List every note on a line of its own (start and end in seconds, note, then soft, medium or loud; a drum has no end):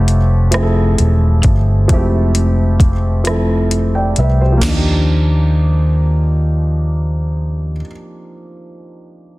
0.00 0.95 F1 loud
0.00 0.15 F3 medium
0.00 0.16 A3 medium
0.00 0.16 C4 medium
0.00 0.17 E4 medium
0.00 0.18 G4 medium
0.00 4.65 C#5 soft
0.00 4.64 F#5 medium
0.08 closed hi-hat soft
0.51 1.52 F3 medium
0.51 1.52 A3 medium
0.51 1.53 C4 medium
0.51 1.54 E4 medium
0.51 cross-stick medium
0.51 closed hi-hat medium
0.57 0.61 G#4 medium
0.63 1.58 A4 medium
0.98 1.41 E1 medium
0.98 closed hi-hat soft
1.43 1.90 G1 medium
1.43 kick medium
1.43 closed hi-hat soft
1.88 4.13 F1 medium
1.88 2.88 F3 medium
1.88 1.96 G#3 soft
1.88 2.90 C4 medium
1.88 kick loud
1.88 closed hi-hat medium
1.92 2.92 A3 medium
1.92 2.91 E4 medium
1.92 2.91 G4 medium
2.35 closed hi-hat soft
2.80 kick medium
2.80 closed hi-hat soft
3.24 4.25 F3 medium
3.24 4.25 A3 soft
3.24 4.26 C4 medium
3.24 cross-stick medium
3.24 closed hi-hat medium
3.28 4.27 E4 medium
3.28 3.73 A4 medium
3.71 closed hi-hat soft
3.95 4.17 D5 soft
3.95 4.16 G5 soft
4.16 4.59 C2 medium
4.16 4.40 B4 soft
4.16 4.39 E5 soft
4.16 closed hi-hat soft
4.41 4.72 G4 soft
4.41 4.84 C5 medium
4.52 7.71 F3 medium
4.57 7.75 A#3 medium
4.61 7.81 D#2 medium
4.61 7.81 D4 medium
4.61 snare medium
4.61 floor tom medium
4.61 crash medium
4.68 7.86 D#4 medium
4.73 7.92 G4 medium